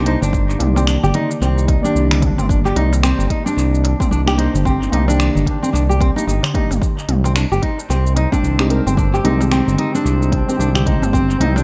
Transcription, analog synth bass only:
0.00 0.16 C2 loud
0.22 0.56 G1 medium
0.60 0.97 C2 medium
1.03 1.12 G1 medium
1.41 1.78 C2 medium
1.95 2.32 C2 loud
2.38 2.72 G1 medium
2.76 3.13 C2 loud
3.19 3.28 G1 medium
3.57 3.94 C2 loud
4.11 4.48 C2 loud
4.54 4.88 G1 medium
4.93 5.30 C2 medium
5.36 5.44 G1 medium
5.73 6.11 C2 medium
6.27 6.40 G1 loud
6.70 6.79 G1 loud
7.08 7.46 C2 loud
7.51 7.60 G1 medium
7.89 8.27 C2 medium
8.44 8.81 C2 loud
8.86 9.20 G1 loud
9.24 9.62 C2 loud
9.67 9.76 G1 medium
10.05 10.43 C2 loud
10.59 10.97 C2 loud
11.02 11.37 G1 medium
11.40 11.63 C2 loud

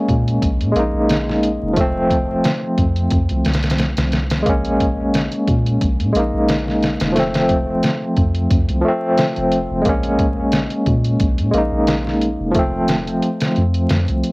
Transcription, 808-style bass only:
0.09 0.38 A#2 loud
0.42 0.62 A#1 loud
0.61 0.74 A#2 loud
0.75 0.91 A#1 loud
0.94 1.58 A#1 medium
1.62 2.42 F1 loud
2.78 3.08 F2 loud
3.12 3.28 F2 medium
3.30 3.44 C2 loud
3.46 3.94 C2 loud
3.98 4.44 C2 medium
4.47 5.29 A#1 medium
5.48 5.78 A#2 loud
5.82 6.01 A#1 loud
6.00 6.13 A#2 loud
6.15 6.31 A#1 loud
6.34 6.97 A#1 medium
7.01 7.81 F1 medium
8.17 8.47 F2 loud
8.51 8.67 F2 loud
8.69 8.83 C2 loud
9.37 9.66 F1 medium
9.71 9.84 F1 loud
9.85 10.68 A#1 loud
10.87 11.17 A#2 loud
11.20 11.40 A#1 loud
11.38 11.52 A#2 loud
11.53 11.70 A#1 loud
11.72 12.36 A#1 loud
12.40 13.20 F1 medium
13.58 13.87 F2 loud
13.91 14.06 F2 loud
14.09 14.22 C2 loud

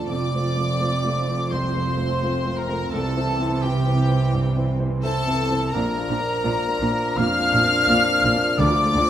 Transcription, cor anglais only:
0.09 1.53 D5 loud
1.51 2.59 C5 medium
2.57 2.91 A#4 medium
2.92 3.64 A4 medium
3.62 4.68 G4 medium
5.03 5.74 A4 loud
5.73 7.19 A#4 medium
7.17 8.59 F5 loud
8.59 9.10 D5 loud

